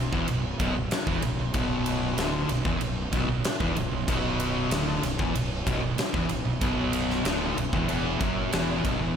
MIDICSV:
0, 0, Header, 1, 6, 480
1, 0, Start_track
1, 0, Tempo, 633580
1, 1176, Time_signature, 4, 2, 24, 8
1, 6942, End_track
2, 0, Start_track
2, 0, Title_t, "Distorted electric guitar"
2, 0, Program_c, 0, 30
2, 0, Note_on_c, 0, 35, 76
2, 93, Note_off_c, 0, 35, 0
2, 96, Note_on_c, 0, 40, 87
2, 99, Note_on_c, 0, 52, 92
2, 210, Note_off_c, 0, 40, 0
2, 212, Note_off_c, 0, 52, 0
2, 215, Note_on_c, 0, 35, 77
2, 409, Note_off_c, 0, 35, 0
2, 453, Note_on_c, 0, 35, 88
2, 458, Note_on_c, 0, 47, 89
2, 564, Note_off_c, 0, 35, 0
2, 571, Note_off_c, 0, 47, 0
2, 573, Note_on_c, 0, 35, 77
2, 687, Note_off_c, 0, 35, 0
2, 813, Note_on_c, 0, 40, 97
2, 817, Note_on_c, 0, 52, 104
2, 928, Note_off_c, 0, 40, 0
2, 930, Note_off_c, 0, 52, 0
2, 936, Note_on_c, 0, 35, 73
2, 1049, Note_off_c, 0, 35, 0
2, 1058, Note_on_c, 0, 35, 76
2, 1163, Note_off_c, 0, 35, 0
2, 1172, Note_on_c, 0, 35, 95
2, 1175, Note_on_c, 0, 47, 110
2, 1644, Note_off_c, 0, 35, 0
2, 1647, Note_off_c, 0, 47, 0
2, 1647, Note_on_c, 0, 38, 93
2, 1653, Note_on_c, 0, 50, 106
2, 1883, Note_off_c, 0, 38, 0
2, 1886, Note_off_c, 0, 50, 0
2, 1894, Note_on_c, 0, 35, 78
2, 2004, Note_off_c, 0, 35, 0
2, 2007, Note_on_c, 0, 40, 92
2, 2013, Note_on_c, 0, 52, 109
2, 2123, Note_off_c, 0, 40, 0
2, 2126, Note_off_c, 0, 52, 0
2, 2134, Note_on_c, 0, 35, 83
2, 2325, Note_off_c, 0, 35, 0
2, 2372, Note_on_c, 0, 35, 87
2, 2376, Note_on_c, 0, 47, 92
2, 2486, Note_off_c, 0, 35, 0
2, 2487, Note_off_c, 0, 47, 0
2, 2494, Note_on_c, 0, 35, 77
2, 2602, Note_off_c, 0, 35, 0
2, 2729, Note_on_c, 0, 40, 93
2, 2736, Note_on_c, 0, 52, 101
2, 2844, Note_off_c, 0, 40, 0
2, 2847, Note_off_c, 0, 52, 0
2, 2852, Note_on_c, 0, 35, 74
2, 2964, Note_off_c, 0, 35, 0
2, 2974, Note_on_c, 0, 35, 75
2, 3080, Note_off_c, 0, 35, 0
2, 3089, Note_on_c, 0, 35, 110
2, 3095, Note_on_c, 0, 47, 117
2, 3563, Note_off_c, 0, 35, 0
2, 3566, Note_off_c, 0, 47, 0
2, 3570, Note_on_c, 0, 38, 98
2, 3575, Note_on_c, 0, 50, 104
2, 3804, Note_off_c, 0, 38, 0
2, 3806, Note_off_c, 0, 50, 0
2, 3812, Note_on_c, 0, 35, 77
2, 3924, Note_off_c, 0, 35, 0
2, 3927, Note_on_c, 0, 40, 98
2, 3934, Note_on_c, 0, 52, 104
2, 4042, Note_off_c, 0, 40, 0
2, 4046, Note_off_c, 0, 52, 0
2, 4052, Note_on_c, 0, 35, 80
2, 4244, Note_off_c, 0, 35, 0
2, 4285, Note_on_c, 0, 35, 96
2, 4293, Note_on_c, 0, 47, 108
2, 4402, Note_off_c, 0, 35, 0
2, 4405, Note_off_c, 0, 47, 0
2, 4410, Note_on_c, 0, 35, 77
2, 4517, Note_off_c, 0, 35, 0
2, 4648, Note_on_c, 0, 40, 98
2, 4651, Note_on_c, 0, 52, 113
2, 4763, Note_off_c, 0, 40, 0
2, 4765, Note_off_c, 0, 52, 0
2, 4768, Note_on_c, 0, 35, 77
2, 4881, Note_off_c, 0, 35, 0
2, 4890, Note_on_c, 0, 35, 76
2, 4999, Note_off_c, 0, 35, 0
2, 5008, Note_on_c, 0, 35, 101
2, 5013, Note_on_c, 0, 47, 111
2, 5485, Note_off_c, 0, 35, 0
2, 5487, Note_off_c, 0, 47, 0
2, 5495, Note_on_c, 0, 38, 92
2, 5500, Note_on_c, 0, 50, 105
2, 5728, Note_off_c, 0, 38, 0
2, 5731, Note_off_c, 0, 50, 0
2, 5737, Note_on_c, 0, 35, 77
2, 5852, Note_off_c, 0, 35, 0
2, 5855, Note_on_c, 0, 40, 88
2, 5861, Note_on_c, 0, 52, 96
2, 5963, Note_off_c, 0, 40, 0
2, 5970, Note_off_c, 0, 52, 0
2, 5972, Note_on_c, 0, 40, 95
2, 5979, Note_on_c, 0, 52, 105
2, 6208, Note_off_c, 0, 40, 0
2, 6212, Note_off_c, 0, 52, 0
2, 6214, Note_on_c, 0, 42, 82
2, 6220, Note_on_c, 0, 54, 106
2, 6450, Note_off_c, 0, 42, 0
2, 6453, Note_off_c, 0, 54, 0
2, 6459, Note_on_c, 0, 40, 96
2, 6463, Note_on_c, 0, 52, 100
2, 6693, Note_off_c, 0, 40, 0
2, 6696, Note_off_c, 0, 52, 0
2, 6704, Note_on_c, 0, 35, 96
2, 6711, Note_on_c, 0, 47, 110
2, 6816, Note_off_c, 0, 35, 0
2, 6820, Note_off_c, 0, 47, 0
2, 6825, Note_on_c, 0, 40, 90
2, 6829, Note_on_c, 0, 52, 107
2, 6937, Note_off_c, 0, 40, 0
2, 6939, Note_off_c, 0, 52, 0
2, 6942, End_track
3, 0, Start_track
3, 0, Title_t, "Fingered electric bass"
3, 0, Program_c, 1, 33
3, 0, Note_on_c, 1, 23, 78
3, 88, Note_off_c, 1, 23, 0
3, 98, Note_on_c, 1, 28, 96
3, 210, Note_off_c, 1, 28, 0
3, 216, Note_on_c, 1, 23, 76
3, 440, Note_off_c, 1, 23, 0
3, 450, Note_on_c, 1, 23, 94
3, 565, Note_off_c, 1, 23, 0
3, 573, Note_on_c, 1, 23, 76
3, 686, Note_off_c, 1, 23, 0
3, 811, Note_on_c, 1, 28, 92
3, 925, Note_off_c, 1, 28, 0
3, 932, Note_on_c, 1, 23, 83
3, 1045, Note_off_c, 1, 23, 0
3, 1050, Note_on_c, 1, 23, 80
3, 1164, Note_off_c, 1, 23, 0
3, 1169, Note_on_c, 1, 23, 86
3, 1621, Note_off_c, 1, 23, 0
3, 1648, Note_on_c, 1, 26, 91
3, 1874, Note_off_c, 1, 26, 0
3, 1887, Note_on_c, 1, 23, 88
3, 2002, Note_off_c, 1, 23, 0
3, 2009, Note_on_c, 1, 28, 97
3, 2123, Note_off_c, 1, 28, 0
3, 2130, Note_on_c, 1, 23, 83
3, 2355, Note_off_c, 1, 23, 0
3, 2370, Note_on_c, 1, 23, 92
3, 2483, Note_off_c, 1, 23, 0
3, 2492, Note_on_c, 1, 23, 81
3, 2604, Note_off_c, 1, 23, 0
3, 2729, Note_on_c, 1, 28, 104
3, 2842, Note_off_c, 1, 28, 0
3, 2849, Note_on_c, 1, 23, 86
3, 2962, Note_off_c, 1, 23, 0
3, 2970, Note_on_c, 1, 23, 77
3, 3083, Note_off_c, 1, 23, 0
3, 3090, Note_on_c, 1, 23, 84
3, 3541, Note_off_c, 1, 23, 0
3, 3571, Note_on_c, 1, 26, 100
3, 3795, Note_off_c, 1, 26, 0
3, 3811, Note_on_c, 1, 23, 91
3, 3923, Note_off_c, 1, 23, 0
3, 3933, Note_on_c, 1, 28, 96
3, 4044, Note_off_c, 1, 28, 0
3, 4057, Note_on_c, 1, 23, 82
3, 4278, Note_off_c, 1, 23, 0
3, 4291, Note_on_c, 1, 23, 98
3, 4403, Note_off_c, 1, 23, 0
3, 4410, Note_on_c, 1, 23, 84
3, 4523, Note_off_c, 1, 23, 0
3, 4652, Note_on_c, 1, 28, 96
3, 4764, Note_off_c, 1, 28, 0
3, 4767, Note_on_c, 1, 23, 84
3, 4881, Note_off_c, 1, 23, 0
3, 4893, Note_on_c, 1, 23, 80
3, 5005, Note_off_c, 1, 23, 0
3, 5010, Note_on_c, 1, 23, 81
3, 5462, Note_off_c, 1, 23, 0
3, 5495, Note_on_c, 1, 26, 99
3, 5719, Note_off_c, 1, 26, 0
3, 5739, Note_on_c, 1, 23, 83
3, 5849, Note_off_c, 1, 23, 0
3, 5855, Note_on_c, 1, 28, 96
3, 5968, Note_off_c, 1, 28, 0
3, 5984, Note_on_c, 1, 28, 85
3, 6205, Note_off_c, 1, 28, 0
3, 6219, Note_on_c, 1, 30, 91
3, 6443, Note_off_c, 1, 30, 0
3, 6465, Note_on_c, 1, 28, 91
3, 6687, Note_off_c, 1, 28, 0
3, 6701, Note_on_c, 1, 23, 99
3, 6814, Note_off_c, 1, 23, 0
3, 6825, Note_on_c, 1, 28, 89
3, 6936, Note_off_c, 1, 28, 0
3, 6942, End_track
4, 0, Start_track
4, 0, Title_t, "Muted distorted electric guitar strokes"
4, 696, Note_on_c, 9, 29, 59
4, 771, Note_off_c, 9, 29, 0
4, 2611, Note_on_c, 9, 29, 63
4, 2687, Note_off_c, 9, 29, 0
4, 4526, Note_on_c, 9, 29, 66
4, 4602, Note_off_c, 9, 29, 0
4, 6942, End_track
5, 0, Start_track
5, 0, Title_t, "Muted fingered electric bass strokes"
5, 697, Note_on_c, 9, 29, 43
5, 773, Note_off_c, 9, 29, 0
5, 2613, Note_on_c, 9, 29, 46
5, 2688, Note_off_c, 9, 29, 0
5, 4528, Note_on_c, 9, 29, 41
5, 4604, Note_off_c, 9, 29, 0
5, 6942, End_track
6, 0, Start_track
6, 0, Title_t, "Drums"
6, 95, Note_on_c, 9, 36, 104
6, 171, Note_off_c, 9, 36, 0
6, 210, Note_on_c, 9, 51, 99
6, 286, Note_off_c, 9, 51, 0
6, 452, Note_on_c, 9, 51, 81
6, 454, Note_on_c, 9, 36, 106
6, 528, Note_off_c, 9, 51, 0
6, 529, Note_off_c, 9, 36, 0
6, 690, Note_on_c, 9, 51, 103
6, 697, Note_on_c, 9, 38, 116
6, 766, Note_off_c, 9, 51, 0
6, 773, Note_off_c, 9, 38, 0
6, 810, Note_on_c, 9, 36, 116
6, 886, Note_off_c, 9, 36, 0
6, 927, Note_on_c, 9, 51, 79
6, 1003, Note_off_c, 9, 51, 0
6, 1165, Note_on_c, 9, 51, 102
6, 1170, Note_on_c, 9, 36, 113
6, 1241, Note_off_c, 9, 51, 0
6, 1245, Note_off_c, 9, 36, 0
6, 1408, Note_on_c, 9, 51, 81
6, 1484, Note_off_c, 9, 51, 0
6, 1650, Note_on_c, 9, 51, 98
6, 1657, Note_on_c, 9, 38, 114
6, 1725, Note_off_c, 9, 51, 0
6, 1733, Note_off_c, 9, 38, 0
6, 1888, Note_on_c, 9, 51, 76
6, 1964, Note_off_c, 9, 51, 0
6, 2009, Note_on_c, 9, 36, 105
6, 2084, Note_off_c, 9, 36, 0
6, 2127, Note_on_c, 9, 51, 95
6, 2202, Note_off_c, 9, 51, 0
6, 2369, Note_on_c, 9, 36, 108
6, 2369, Note_on_c, 9, 51, 76
6, 2444, Note_off_c, 9, 51, 0
6, 2445, Note_off_c, 9, 36, 0
6, 2609, Note_on_c, 9, 51, 105
6, 2617, Note_on_c, 9, 38, 111
6, 2685, Note_off_c, 9, 51, 0
6, 2692, Note_off_c, 9, 38, 0
6, 2730, Note_on_c, 9, 36, 109
6, 2806, Note_off_c, 9, 36, 0
6, 2852, Note_on_c, 9, 51, 83
6, 2928, Note_off_c, 9, 51, 0
6, 3091, Note_on_c, 9, 36, 110
6, 3092, Note_on_c, 9, 51, 113
6, 3167, Note_off_c, 9, 36, 0
6, 3168, Note_off_c, 9, 51, 0
6, 3332, Note_on_c, 9, 51, 84
6, 3407, Note_off_c, 9, 51, 0
6, 3570, Note_on_c, 9, 51, 112
6, 3578, Note_on_c, 9, 38, 117
6, 3646, Note_off_c, 9, 51, 0
6, 3654, Note_off_c, 9, 38, 0
6, 3813, Note_on_c, 9, 51, 81
6, 3820, Note_on_c, 9, 38, 34
6, 3889, Note_off_c, 9, 51, 0
6, 3896, Note_off_c, 9, 38, 0
6, 3933, Note_on_c, 9, 36, 110
6, 4009, Note_off_c, 9, 36, 0
6, 4056, Note_on_c, 9, 51, 106
6, 4132, Note_off_c, 9, 51, 0
6, 4294, Note_on_c, 9, 36, 107
6, 4298, Note_on_c, 9, 51, 80
6, 4370, Note_off_c, 9, 36, 0
6, 4374, Note_off_c, 9, 51, 0
6, 4531, Note_on_c, 9, 51, 110
6, 4538, Note_on_c, 9, 38, 115
6, 4607, Note_off_c, 9, 51, 0
6, 4614, Note_off_c, 9, 38, 0
6, 4652, Note_on_c, 9, 36, 111
6, 4727, Note_off_c, 9, 36, 0
6, 4768, Note_on_c, 9, 51, 82
6, 4843, Note_off_c, 9, 51, 0
6, 5009, Note_on_c, 9, 51, 106
6, 5012, Note_on_c, 9, 36, 110
6, 5085, Note_off_c, 9, 51, 0
6, 5087, Note_off_c, 9, 36, 0
6, 5250, Note_on_c, 9, 51, 83
6, 5326, Note_off_c, 9, 51, 0
6, 5381, Note_on_c, 9, 38, 32
6, 5457, Note_off_c, 9, 38, 0
6, 5494, Note_on_c, 9, 51, 104
6, 5501, Note_on_c, 9, 38, 113
6, 5569, Note_off_c, 9, 51, 0
6, 5577, Note_off_c, 9, 38, 0
6, 5740, Note_on_c, 9, 51, 70
6, 5816, Note_off_c, 9, 51, 0
6, 5856, Note_on_c, 9, 36, 109
6, 5932, Note_off_c, 9, 36, 0
6, 5975, Note_on_c, 9, 51, 92
6, 6051, Note_off_c, 9, 51, 0
6, 6217, Note_on_c, 9, 51, 75
6, 6218, Note_on_c, 9, 36, 106
6, 6293, Note_off_c, 9, 36, 0
6, 6293, Note_off_c, 9, 51, 0
6, 6459, Note_on_c, 9, 51, 102
6, 6467, Note_on_c, 9, 38, 116
6, 6535, Note_off_c, 9, 51, 0
6, 6542, Note_off_c, 9, 38, 0
6, 6703, Note_on_c, 9, 36, 112
6, 6705, Note_on_c, 9, 51, 80
6, 6779, Note_off_c, 9, 36, 0
6, 6781, Note_off_c, 9, 51, 0
6, 6942, End_track
0, 0, End_of_file